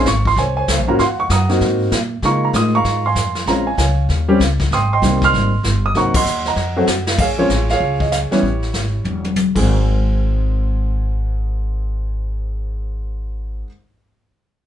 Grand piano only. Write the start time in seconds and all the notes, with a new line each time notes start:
Already playing: F5 G#5
0.07 C#6
0.27 C6
0.39 C5 C#5 G#5
0.57 C5 C#5 G#5
0.88 A#3 C#4 F4 F#4 A#5
0.99 F5 F#5 C6
1.20 C#6
1.31 F#5 A#5 D#6
1.49 A#3 C4 D#4 F#4
2.24 G#3 A#3 D#4 F4 F5 A#5 C#6
2.45 A#5
2.55 G#3 D#4 F4 A#4 D#6
2.75 F5 A#5 C#6
3.06 F5 G#5 C6
3.47 G#3 C4 C#4 F4 C#5 F5 A#5
3.67 G#5
3.78 C#5 F5 G#5
4.28 G3 C4 C#4 G4
4.73 G5 C6 D#6
4.93 D#5 G5 C6
5.02 G3 A#3 C4 D#4
5.24 C6 F6
5.86 D#6
5.95 F#3 A#3 C4 D#4 F#5 A#5 C#6
6.16 D#5 F#5 C6
6.48 D#5 F#5 A#5
6.76 F#3 A3 C4 F#4
7.20 G#4 C#5 F5
7.38 F3 G#3 C4 C#4 F4 G#4 C#5
7.71 G#4 C#5 F5
8.01 D#5
8.12 F5
8.31 E3 G3 B3 C#4 E4 G4 C#5
9.55 G#2 D#3 G#3 C4 G#4